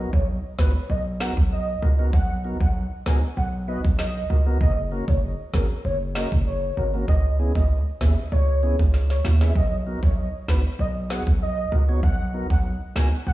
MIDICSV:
0, 0, Header, 1, 5, 480
1, 0, Start_track
1, 0, Key_signature, 5, "major"
1, 0, Tempo, 618557
1, 1657, Time_signature, 4, 2, 24, 8
1, 10345, End_track
2, 0, Start_track
2, 0, Title_t, "Soft synth lead"
2, 0, Program_c, 0, 80
2, 102, Note_on_c, 0, 73, 73
2, 176, Note_off_c, 0, 73, 0
2, 454, Note_on_c, 0, 71, 80
2, 539, Note_off_c, 0, 71, 0
2, 695, Note_on_c, 0, 75, 74
2, 779, Note_off_c, 0, 75, 0
2, 935, Note_on_c, 0, 78, 78
2, 1019, Note_off_c, 0, 78, 0
2, 1175, Note_on_c, 0, 75, 92
2, 1521, Note_off_c, 0, 75, 0
2, 1656, Note_on_c, 0, 78, 107
2, 1814, Note_off_c, 0, 78, 0
2, 2023, Note_on_c, 0, 78, 88
2, 2098, Note_off_c, 0, 78, 0
2, 2374, Note_on_c, 0, 80, 72
2, 2459, Note_off_c, 0, 80, 0
2, 2615, Note_on_c, 0, 78, 86
2, 2699, Note_off_c, 0, 78, 0
2, 2855, Note_on_c, 0, 75, 78
2, 2939, Note_off_c, 0, 75, 0
2, 3096, Note_on_c, 0, 75, 88
2, 3441, Note_off_c, 0, 75, 0
2, 3576, Note_on_c, 0, 75, 106
2, 3734, Note_off_c, 0, 75, 0
2, 3943, Note_on_c, 0, 73, 73
2, 4018, Note_off_c, 0, 73, 0
2, 4296, Note_on_c, 0, 70, 86
2, 4380, Note_off_c, 0, 70, 0
2, 4537, Note_on_c, 0, 73, 83
2, 4620, Note_off_c, 0, 73, 0
2, 4775, Note_on_c, 0, 75, 86
2, 4859, Note_off_c, 0, 75, 0
2, 5015, Note_on_c, 0, 73, 84
2, 5361, Note_off_c, 0, 73, 0
2, 5494, Note_on_c, 0, 75, 112
2, 5653, Note_off_c, 0, 75, 0
2, 5861, Note_on_c, 0, 75, 72
2, 5936, Note_off_c, 0, 75, 0
2, 6213, Note_on_c, 0, 76, 77
2, 6298, Note_off_c, 0, 76, 0
2, 6455, Note_on_c, 0, 73, 102
2, 6801, Note_off_c, 0, 73, 0
2, 7063, Note_on_c, 0, 73, 73
2, 7137, Note_off_c, 0, 73, 0
2, 7302, Note_on_c, 0, 76, 79
2, 7376, Note_off_c, 0, 76, 0
2, 7415, Note_on_c, 0, 75, 105
2, 7573, Note_off_c, 0, 75, 0
2, 7784, Note_on_c, 0, 73, 74
2, 7858, Note_off_c, 0, 73, 0
2, 8137, Note_on_c, 0, 71, 86
2, 8221, Note_off_c, 0, 71, 0
2, 8378, Note_on_c, 0, 75, 74
2, 8461, Note_off_c, 0, 75, 0
2, 8620, Note_on_c, 0, 78, 82
2, 8702, Note_off_c, 0, 78, 0
2, 8859, Note_on_c, 0, 75, 92
2, 9203, Note_off_c, 0, 75, 0
2, 9335, Note_on_c, 0, 78, 106
2, 9493, Note_off_c, 0, 78, 0
2, 9705, Note_on_c, 0, 78, 84
2, 9779, Note_off_c, 0, 78, 0
2, 10057, Note_on_c, 0, 80, 71
2, 10140, Note_off_c, 0, 80, 0
2, 10297, Note_on_c, 0, 78, 86
2, 10345, Note_off_c, 0, 78, 0
2, 10345, End_track
3, 0, Start_track
3, 0, Title_t, "Tonewheel organ"
3, 0, Program_c, 1, 16
3, 0, Note_on_c, 1, 59, 71
3, 0, Note_on_c, 1, 63, 66
3, 0, Note_on_c, 1, 66, 65
3, 0, Note_on_c, 1, 70, 80
3, 79, Note_off_c, 1, 59, 0
3, 79, Note_off_c, 1, 63, 0
3, 79, Note_off_c, 1, 66, 0
3, 79, Note_off_c, 1, 70, 0
3, 456, Note_on_c, 1, 63, 67
3, 457, Note_on_c, 1, 59, 73
3, 458, Note_on_c, 1, 66, 67
3, 458, Note_on_c, 1, 71, 82
3, 558, Note_off_c, 1, 63, 0
3, 559, Note_off_c, 1, 59, 0
3, 559, Note_off_c, 1, 66, 0
3, 559, Note_off_c, 1, 71, 0
3, 935, Note_on_c, 1, 59, 71
3, 935, Note_on_c, 1, 63, 62
3, 936, Note_on_c, 1, 66, 65
3, 936, Note_on_c, 1, 70, 77
3, 1037, Note_off_c, 1, 59, 0
3, 1038, Note_off_c, 1, 63, 0
3, 1038, Note_off_c, 1, 66, 0
3, 1038, Note_off_c, 1, 70, 0
3, 1417, Note_on_c, 1, 66, 71
3, 1418, Note_on_c, 1, 70, 78
3, 1467, Note_off_c, 1, 66, 0
3, 1468, Note_off_c, 1, 70, 0
3, 1545, Note_on_c, 1, 59, 68
3, 1545, Note_on_c, 1, 63, 60
3, 1546, Note_on_c, 1, 66, 60
3, 1546, Note_on_c, 1, 70, 70
3, 1634, Note_off_c, 1, 63, 0
3, 1635, Note_off_c, 1, 59, 0
3, 1635, Note_off_c, 1, 66, 0
3, 1635, Note_off_c, 1, 70, 0
3, 1898, Note_on_c, 1, 59, 73
3, 1898, Note_on_c, 1, 63, 63
3, 1898, Note_on_c, 1, 70, 74
3, 1899, Note_on_c, 1, 66, 66
3, 1999, Note_off_c, 1, 59, 0
3, 1999, Note_off_c, 1, 63, 0
3, 1999, Note_off_c, 1, 66, 0
3, 1999, Note_off_c, 1, 70, 0
3, 2377, Note_on_c, 1, 59, 71
3, 2378, Note_on_c, 1, 63, 67
3, 2378, Note_on_c, 1, 66, 66
3, 2379, Note_on_c, 1, 70, 79
3, 2479, Note_off_c, 1, 59, 0
3, 2479, Note_off_c, 1, 63, 0
3, 2479, Note_off_c, 1, 66, 0
3, 2479, Note_off_c, 1, 70, 0
3, 2857, Note_on_c, 1, 59, 75
3, 2857, Note_on_c, 1, 63, 66
3, 2857, Note_on_c, 1, 66, 66
3, 2857, Note_on_c, 1, 71, 82
3, 2959, Note_off_c, 1, 59, 0
3, 2959, Note_off_c, 1, 63, 0
3, 2959, Note_off_c, 1, 66, 0
3, 2959, Note_off_c, 1, 71, 0
3, 3334, Note_on_c, 1, 66, 69
3, 3335, Note_on_c, 1, 70, 76
3, 3386, Note_off_c, 1, 66, 0
3, 3387, Note_off_c, 1, 70, 0
3, 3464, Note_on_c, 1, 59, 68
3, 3465, Note_on_c, 1, 63, 58
3, 3465, Note_on_c, 1, 66, 61
3, 3465, Note_on_c, 1, 70, 75
3, 3554, Note_off_c, 1, 59, 0
3, 3555, Note_off_c, 1, 63, 0
3, 3555, Note_off_c, 1, 66, 0
3, 3555, Note_off_c, 1, 70, 0
3, 3815, Note_on_c, 1, 61, 63
3, 3816, Note_on_c, 1, 58, 71
3, 3817, Note_on_c, 1, 66, 65
3, 3817, Note_on_c, 1, 70, 79
3, 3918, Note_off_c, 1, 58, 0
3, 3918, Note_off_c, 1, 61, 0
3, 3919, Note_off_c, 1, 66, 0
3, 3919, Note_off_c, 1, 70, 0
3, 4296, Note_on_c, 1, 58, 71
3, 4297, Note_on_c, 1, 61, 67
3, 4297, Note_on_c, 1, 66, 67
3, 4297, Note_on_c, 1, 68, 83
3, 4398, Note_off_c, 1, 58, 0
3, 4398, Note_off_c, 1, 61, 0
3, 4398, Note_off_c, 1, 66, 0
3, 4399, Note_off_c, 1, 68, 0
3, 4775, Note_on_c, 1, 58, 74
3, 4776, Note_on_c, 1, 61, 65
3, 4777, Note_on_c, 1, 66, 67
3, 4777, Note_on_c, 1, 70, 82
3, 4878, Note_off_c, 1, 58, 0
3, 4878, Note_off_c, 1, 61, 0
3, 4878, Note_off_c, 1, 66, 0
3, 4878, Note_off_c, 1, 70, 0
3, 5257, Note_on_c, 1, 66, 73
3, 5258, Note_on_c, 1, 70, 81
3, 5308, Note_off_c, 1, 66, 0
3, 5308, Note_off_c, 1, 70, 0
3, 5385, Note_on_c, 1, 58, 65
3, 5386, Note_on_c, 1, 61, 62
3, 5386, Note_on_c, 1, 66, 62
3, 5386, Note_on_c, 1, 70, 72
3, 5475, Note_off_c, 1, 58, 0
3, 5475, Note_off_c, 1, 61, 0
3, 5475, Note_off_c, 1, 66, 0
3, 5475, Note_off_c, 1, 70, 0
3, 5737, Note_on_c, 1, 59, 71
3, 5738, Note_on_c, 1, 61, 66
3, 5739, Note_on_c, 1, 64, 66
3, 5740, Note_on_c, 1, 68, 78
3, 5839, Note_off_c, 1, 59, 0
3, 5839, Note_off_c, 1, 61, 0
3, 5840, Note_off_c, 1, 64, 0
3, 5840, Note_off_c, 1, 68, 0
3, 6218, Note_on_c, 1, 59, 76
3, 6218, Note_on_c, 1, 61, 64
3, 6219, Note_on_c, 1, 64, 67
3, 6219, Note_on_c, 1, 68, 81
3, 6319, Note_off_c, 1, 59, 0
3, 6319, Note_off_c, 1, 61, 0
3, 6319, Note_off_c, 1, 64, 0
3, 6320, Note_off_c, 1, 68, 0
3, 6696, Note_on_c, 1, 59, 68
3, 6697, Note_on_c, 1, 61, 69
3, 6698, Note_on_c, 1, 64, 65
3, 6698, Note_on_c, 1, 68, 78
3, 6798, Note_off_c, 1, 59, 0
3, 6798, Note_off_c, 1, 61, 0
3, 6799, Note_off_c, 1, 64, 0
3, 6799, Note_off_c, 1, 68, 0
3, 7173, Note_on_c, 1, 64, 71
3, 7176, Note_on_c, 1, 66, 76
3, 7226, Note_off_c, 1, 64, 0
3, 7227, Note_off_c, 1, 66, 0
3, 7303, Note_on_c, 1, 59, 66
3, 7303, Note_on_c, 1, 61, 57
3, 7304, Note_on_c, 1, 64, 59
3, 7304, Note_on_c, 1, 68, 73
3, 7393, Note_off_c, 1, 59, 0
3, 7393, Note_off_c, 1, 61, 0
3, 7394, Note_off_c, 1, 64, 0
3, 7394, Note_off_c, 1, 68, 0
3, 7656, Note_on_c, 1, 59, 67
3, 7656, Note_on_c, 1, 63, 66
3, 7657, Note_on_c, 1, 66, 63
3, 7658, Note_on_c, 1, 70, 77
3, 7758, Note_off_c, 1, 59, 0
3, 7758, Note_off_c, 1, 63, 0
3, 7759, Note_off_c, 1, 66, 0
3, 7759, Note_off_c, 1, 70, 0
3, 8136, Note_on_c, 1, 59, 73
3, 8136, Note_on_c, 1, 63, 68
3, 8136, Note_on_c, 1, 66, 64
3, 8137, Note_on_c, 1, 71, 80
3, 8238, Note_off_c, 1, 59, 0
3, 8238, Note_off_c, 1, 63, 0
3, 8238, Note_off_c, 1, 66, 0
3, 8239, Note_off_c, 1, 71, 0
3, 8616, Note_on_c, 1, 59, 74
3, 8616, Note_on_c, 1, 63, 67
3, 8617, Note_on_c, 1, 66, 65
3, 8618, Note_on_c, 1, 68, 80
3, 8718, Note_off_c, 1, 59, 0
3, 8718, Note_off_c, 1, 63, 0
3, 8719, Note_off_c, 1, 66, 0
3, 8719, Note_off_c, 1, 68, 0
3, 9095, Note_on_c, 1, 66, 74
3, 9096, Note_on_c, 1, 70, 78
3, 9147, Note_off_c, 1, 66, 0
3, 9147, Note_off_c, 1, 70, 0
3, 9223, Note_on_c, 1, 59, 69
3, 9223, Note_on_c, 1, 63, 64
3, 9224, Note_on_c, 1, 66, 60
3, 9225, Note_on_c, 1, 73, 72
3, 9314, Note_off_c, 1, 59, 0
3, 9314, Note_off_c, 1, 63, 0
3, 9314, Note_off_c, 1, 66, 0
3, 9315, Note_off_c, 1, 73, 0
3, 9575, Note_on_c, 1, 59, 74
3, 9575, Note_on_c, 1, 63, 62
3, 9576, Note_on_c, 1, 66, 62
3, 9577, Note_on_c, 1, 70, 79
3, 9677, Note_off_c, 1, 59, 0
3, 9678, Note_off_c, 1, 63, 0
3, 9678, Note_off_c, 1, 66, 0
3, 9679, Note_off_c, 1, 70, 0
3, 10057, Note_on_c, 1, 59, 75
3, 10057, Note_on_c, 1, 66, 68
3, 10058, Note_on_c, 1, 63, 67
3, 10058, Note_on_c, 1, 70, 83
3, 10159, Note_off_c, 1, 59, 0
3, 10159, Note_off_c, 1, 63, 0
3, 10159, Note_off_c, 1, 66, 0
3, 10159, Note_off_c, 1, 70, 0
3, 10345, End_track
4, 0, Start_track
4, 0, Title_t, "808-style bass"
4, 0, Program_c, 2, 38
4, 102, Note_on_c, 2, 35, 94
4, 310, Note_off_c, 2, 35, 0
4, 455, Note_on_c, 2, 37, 96
4, 566, Note_off_c, 2, 37, 0
4, 695, Note_on_c, 2, 35, 85
4, 1014, Note_off_c, 2, 35, 0
4, 1064, Note_on_c, 2, 35, 79
4, 1369, Note_off_c, 2, 35, 0
4, 1416, Note_on_c, 2, 37, 91
4, 1624, Note_off_c, 2, 37, 0
4, 1655, Note_on_c, 2, 35, 98
4, 1973, Note_off_c, 2, 35, 0
4, 2022, Note_on_c, 2, 35, 89
4, 2230, Note_off_c, 2, 35, 0
4, 2376, Note_on_c, 2, 37, 105
4, 2486, Note_off_c, 2, 37, 0
4, 2616, Note_on_c, 2, 35, 93
4, 2934, Note_off_c, 2, 35, 0
4, 2985, Note_on_c, 2, 35, 84
4, 3290, Note_off_c, 2, 35, 0
4, 3337, Note_on_c, 2, 37, 94
4, 3544, Note_off_c, 2, 37, 0
4, 3575, Note_on_c, 2, 30, 102
4, 3894, Note_off_c, 2, 30, 0
4, 3942, Note_on_c, 2, 30, 98
4, 4151, Note_off_c, 2, 30, 0
4, 4296, Note_on_c, 2, 32, 99
4, 4406, Note_off_c, 2, 32, 0
4, 4538, Note_on_c, 2, 30, 95
4, 4855, Note_off_c, 2, 30, 0
4, 4905, Note_on_c, 2, 30, 93
4, 5210, Note_off_c, 2, 30, 0
4, 5255, Note_on_c, 2, 32, 91
4, 5464, Note_off_c, 2, 32, 0
4, 5495, Note_on_c, 2, 37, 98
4, 5814, Note_off_c, 2, 37, 0
4, 5862, Note_on_c, 2, 37, 92
4, 6070, Note_off_c, 2, 37, 0
4, 6216, Note_on_c, 2, 39, 102
4, 6326, Note_off_c, 2, 39, 0
4, 6456, Note_on_c, 2, 37, 95
4, 6774, Note_off_c, 2, 37, 0
4, 6825, Note_on_c, 2, 37, 91
4, 7129, Note_off_c, 2, 37, 0
4, 7174, Note_on_c, 2, 39, 89
4, 7383, Note_off_c, 2, 39, 0
4, 7416, Note_on_c, 2, 35, 98
4, 7734, Note_off_c, 2, 35, 0
4, 7782, Note_on_c, 2, 35, 93
4, 7990, Note_off_c, 2, 35, 0
4, 8136, Note_on_c, 2, 37, 99
4, 8246, Note_off_c, 2, 37, 0
4, 8374, Note_on_c, 2, 35, 87
4, 8693, Note_off_c, 2, 35, 0
4, 8745, Note_on_c, 2, 35, 83
4, 9050, Note_off_c, 2, 35, 0
4, 9095, Note_on_c, 2, 37, 91
4, 9303, Note_off_c, 2, 37, 0
4, 9336, Note_on_c, 2, 35, 106
4, 9654, Note_off_c, 2, 35, 0
4, 9702, Note_on_c, 2, 35, 93
4, 9910, Note_off_c, 2, 35, 0
4, 10054, Note_on_c, 2, 37, 101
4, 10165, Note_off_c, 2, 37, 0
4, 10295, Note_on_c, 2, 35, 91
4, 10345, Note_off_c, 2, 35, 0
4, 10345, End_track
5, 0, Start_track
5, 0, Title_t, "Drums"
5, 102, Note_on_c, 9, 36, 87
5, 179, Note_off_c, 9, 36, 0
5, 455, Note_on_c, 9, 36, 84
5, 455, Note_on_c, 9, 38, 113
5, 532, Note_off_c, 9, 38, 0
5, 533, Note_off_c, 9, 36, 0
5, 935, Note_on_c, 9, 38, 110
5, 1012, Note_off_c, 9, 38, 0
5, 1064, Note_on_c, 9, 36, 87
5, 1142, Note_off_c, 9, 36, 0
5, 1655, Note_on_c, 9, 36, 111
5, 1733, Note_off_c, 9, 36, 0
5, 2022, Note_on_c, 9, 36, 88
5, 2099, Note_off_c, 9, 36, 0
5, 2376, Note_on_c, 9, 38, 119
5, 2453, Note_off_c, 9, 38, 0
5, 2985, Note_on_c, 9, 36, 88
5, 3062, Note_off_c, 9, 36, 0
5, 3094, Note_on_c, 9, 38, 107
5, 3172, Note_off_c, 9, 38, 0
5, 3576, Note_on_c, 9, 36, 110
5, 3653, Note_off_c, 9, 36, 0
5, 3942, Note_on_c, 9, 36, 84
5, 4020, Note_off_c, 9, 36, 0
5, 4296, Note_on_c, 9, 36, 90
5, 4296, Note_on_c, 9, 38, 116
5, 4374, Note_off_c, 9, 36, 0
5, 4374, Note_off_c, 9, 38, 0
5, 4775, Note_on_c, 9, 38, 109
5, 4852, Note_off_c, 9, 38, 0
5, 4905, Note_on_c, 9, 36, 88
5, 4983, Note_off_c, 9, 36, 0
5, 5495, Note_on_c, 9, 36, 112
5, 5573, Note_off_c, 9, 36, 0
5, 5862, Note_on_c, 9, 36, 89
5, 5940, Note_off_c, 9, 36, 0
5, 6216, Note_on_c, 9, 36, 86
5, 6216, Note_on_c, 9, 38, 120
5, 6293, Note_off_c, 9, 36, 0
5, 6293, Note_off_c, 9, 38, 0
5, 6825, Note_on_c, 9, 36, 88
5, 6902, Note_off_c, 9, 36, 0
5, 6937, Note_on_c, 9, 38, 54
5, 7014, Note_off_c, 9, 38, 0
5, 7063, Note_on_c, 9, 38, 59
5, 7141, Note_off_c, 9, 38, 0
5, 7176, Note_on_c, 9, 38, 85
5, 7254, Note_off_c, 9, 38, 0
5, 7303, Note_on_c, 9, 38, 83
5, 7381, Note_off_c, 9, 38, 0
5, 7415, Note_on_c, 9, 36, 116
5, 7492, Note_off_c, 9, 36, 0
5, 7782, Note_on_c, 9, 36, 90
5, 7859, Note_off_c, 9, 36, 0
5, 8136, Note_on_c, 9, 36, 85
5, 8137, Note_on_c, 9, 38, 112
5, 8213, Note_off_c, 9, 36, 0
5, 8214, Note_off_c, 9, 38, 0
5, 8616, Note_on_c, 9, 38, 115
5, 8694, Note_off_c, 9, 38, 0
5, 8745, Note_on_c, 9, 36, 88
5, 8823, Note_off_c, 9, 36, 0
5, 9336, Note_on_c, 9, 36, 112
5, 9413, Note_off_c, 9, 36, 0
5, 9702, Note_on_c, 9, 36, 89
5, 9780, Note_off_c, 9, 36, 0
5, 10057, Note_on_c, 9, 38, 120
5, 10134, Note_off_c, 9, 38, 0
5, 10345, End_track
0, 0, End_of_file